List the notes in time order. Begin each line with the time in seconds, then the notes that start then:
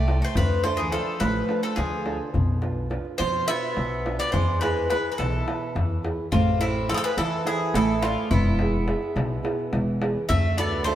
Already playing: C2 A3 D5
0.08 E4 A4 C5, darbuka tek
0.22 A3 C5
0.35 D2 D3 F3 B4, darbuka dum
0.64 A3 D4 F4 A4 C5, darbuka tek
0.77 E3 G#4
0.92 F3 D4 F4 A4, darbuka tek
1.06 darbuka tek
1.20 A1 F3 A3 B4, darbuka tek
1.49 D4 F4 A4, darbuka tek
1.63 F3 A4
1.76 D2 D3 F3 G#4, darbuka tek
2.05 D4 F4 A4, darbuka tek
2.34 B1 B2, darbuka dum
2.61 D4 F4 B4, darbuka tek
2.90 D4 F4 B4, darbuka tek
3.05 darbuka tek
3.18 F2 B2 F3 C5, darbuka tek
3.47 B3 D4 F4 B4 E5, darbuka tek
3.77 B1 B2, darbuka tek
4.05 D4 F4 B4, darbuka tek
4.19 B3 D5
4.32 E2 E3 G#3 C5, darbuka dum
4.48 darbuka tek
4.61 G#3 E4 G#4 B4, darbuka tek
4.76 darbuka tek
4.90 G#3 E4 G#4 B4, darbuka tek
5.05 darbuka tek
5.12 G#3 B4
5.18 B1 B2 E3 A4, darbuka tek
5.48 E4 B4, darbuka tek
5.75 E2 E3, darbuka tek, darbuka dum
5.90 darbuka tek
6.03 E4 G#4 B4, darbuka tek
6.32 A1 C3 A3 F4, darbuka dum
6.47 darbuka tek
6.60 C3 E4 A4 C5, darbuka tek
6.75 darbuka tek
6.89 F3 E4 A4 C5, darbuka tek
6.93 E3 F3 G#4
6.97 A4
7.03 G#3 B4, darbuka tek
7.17 E2 E3 A4, darbuka tek
7.45 E3 E4 G#4 A4 C5, darbuka tek
7.60 darbuka tek
7.74 A1 E3 A3 A4, darbuka tek
8.02 D3 E4 F4 A4 C5, darbuka tek
8.17 darbuka tek
8.31 E1 E3 B3 E4, darbuka dum
8.46 darbuka tek
8.59 E4 G#4 B4, darbuka tek
8.74 darbuka tek
8.88 E4 G#4 B4, darbuka tek
9.02 darbuka tek
9.15 B1 B2, darbuka tek
9.43 E4 G#4 B4, darbuka tek
9.59 darbuka tek
9.73 E1 E3, darbuka tek
10.01 E4 G#4 B4, darbuka tek
10.15 darbuka tek
10.29 D2 D3 A3 E5, darbuka dum
10.44 darbuka tek
10.58 B3 D4 F#4 A4 D5, darbuka tek
10.72 darbuka tek
10.84 A3 D4 F#4 A4 C5, darbuka tek